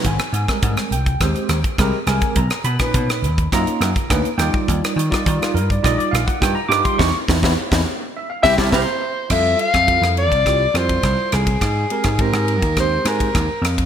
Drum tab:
CC |----------------|----------------|----------------|----------------|
RD |----------------|----------------|----------------|----------------|
HH |xxxxxxxxxxxxx-xx|xxxxxxxxxxxxxxx-|xxxxxxxxxxxxx-xx|----------------|
SD |-r-r-r--r-r-r-r-|-r-r-r--r-r-r-r-|-r-r-r--r-r-r-r-|o-oo-o----ooo---|
BD |o--oo--oo--oo--o|o--oo--oo--oo--o|o--oo--oo--oo--o|o-oo-o----ooo---|

CC |x---------------|----------------|
RD |--xxx-xxx-xxx-xx|x-xxx-xxx-xxx-xx|
HH |----------------|----------------|
SD |r--r-r--r-r-r-r-|r--r-r--r-r-r-r-|
BD |o--oo--oo--oo--o|o--oo--oo--oo--o|